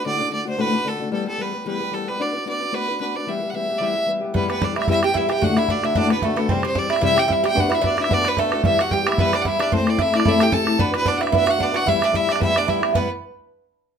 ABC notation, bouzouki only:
X:1
M:4/4
L:1/8
Q:"Swing" 1/4=223
K:Em
V:1 name="Bouzouki"
z8 | z8 | z8 | z8 |
B, B, D E E G E G | F E D E D B, A, B, | C C D E E G E G | F E D E D B, A,2 |
E F G E B, D E D | C2 E D E G A2 | B, B, D E E F D F | E D E D E D E2 |
B, z6 z |]